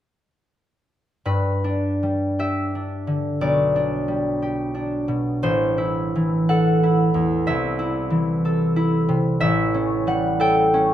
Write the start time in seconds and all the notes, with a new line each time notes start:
1.25 G2 B4
1.64 D4
2.03 G3
2.39 G4 E5
2.75 D4
3.07 D3
3.41 B1 D5
3.76 D4
4.08 G3
4.42 G4
4.74 D4
5.08 B2
5.43 A1 C5
5.78 E4
6.16 E3
6.49 A4 F#5
6.83 E4
7.14 E2
7.47 C2 E5
7.79 E4
8.10 E3
8.45 A4
8.76 E4
9.09 C3
9.40 A1 E5
9.74 C#4
10.07 G3 F#5
10.40 A4 G5
10.74 C#4